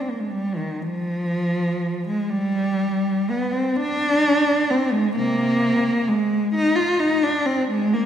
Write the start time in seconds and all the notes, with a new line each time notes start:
0.01 C4
0.10 A#3
0.20 G#3
0.30 G3
0.56 D#3
0.82 F3
2.08 G#3
2.30 G3
3.30 B3
3.53 C4
3.76 D4
4.70 C4
4.93 G#3
5.16 C3 A#3
6.08 G#3
6.55 D#4
6.75 F4
7.00 D#4
7.23 D4
7.46 C4
7.69 G#3
7.94 A#3